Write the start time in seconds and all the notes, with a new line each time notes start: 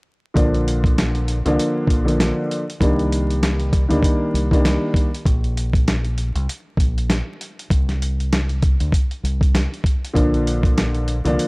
0.34 A#1 D3 F3 A#3 D4, kick, closed hi-hat
0.54 closed hi-hat
0.68 closed hi-hat
0.84 kick, closed hi-hat
0.98 snare, closed hi-hat
1.15 closed hi-hat
1.28 closed hi-hat
1.45 C2 D3 F3 A#3 D4, closed hi-hat
1.59 closed hi-hat
1.88 A#1, kick, closed hi-hat
2.05 D3 F3 A#3 D4, closed hi-hat
2.20 snare, closed hi-hat
2.51 closed hi-hat
2.70 closed hi-hat
2.80 C2 D#3 G3 A#3 D4, kick, closed hi-hat
2.99 closed hi-hat
3.12 closed hi-hat
3.30 closed hi-hat
3.43 snare, closed hi-hat
3.60 closed hi-hat
3.73 kick, closed hi-hat
3.89 D2 D#3 G3 A#3 D4, closed hi-hat
4.03 kick, closed hi-hat
4.34 C2, closed hi-hat
4.51 D#3 G3 A#3 D4, kick, closed hi-hat
4.65 snare, closed hi-hat
4.94 kick, closed hi-hat
5.14 closed hi-hat
5.26 A#1, kick, closed hi-hat
5.44 closed hi-hat
5.57 closed hi-hat
5.73 kick, closed hi-hat
5.88 snare, closed hi-hat
6.05 closed hi-hat
6.18 closed hi-hat
6.35 C2, closed hi-hat
6.49 closed hi-hat
6.77 A#1, kick, closed hi-hat
6.98 closed hi-hat
7.10 snare, closed hi-hat
7.41 closed hi-hat
7.59 closed hi-hat
7.70 C2, kick, closed hi-hat
7.89 snare, closed hi-hat
8.02 closed hi-hat
8.20 closed hi-hat
8.33 snare, closed hi-hat
8.49 closed hi-hat
8.62 kick, closed hi-hat
8.80 D2, closed hi-hat
8.92 kick, closed hi-hat
9.11 closed hi-hat
9.23 C2, closed hi-hat
9.41 kick, closed hi-hat
9.55 snare, closed hi-hat
9.74 closed hi-hat
9.84 kick, closed hi-hat
10.04 closed hi-hat
10.13 A#1 D3 F3 A#3 D4, kick, closed hi-hat
10.34 closed hi-hat
10.47 closed hi-hat
10.63 kick, closed hi-hat
10.78 snare, closed hi-hat
10.95 closed hi-hat
11.08 closed hi-hat
11.25 C2 D3 F3 A#3 D4, closed hi-hat
11.39 closed hi-hat